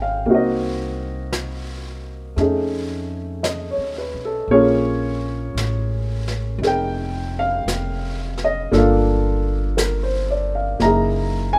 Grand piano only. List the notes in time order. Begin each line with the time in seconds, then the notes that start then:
Already playing: G#3 A#3 C4 D#4 F4 G5 G#5
0.02 F5
0.26 A#3 C4 D#4
0.31 F#4 D#5
2.36 A3 C#4 D#4
2.41 G#4
3.43 D#5
3.71 C#5
3.98 B4
4.25 A4
4.51 A#3 C#4 F4 G#4 C#5
6.62 D#4 G#4 A#4
6.67 G5
7.39 F5
8.44 D#5
8.71 A#3 D4 F4 A4
8.78 F5
9.77 A#4
10.03 C5
10.30 D5
10.55 F5
10.79 A#3 D#4 E4 A#5
10.86 G#4
11.53 G#5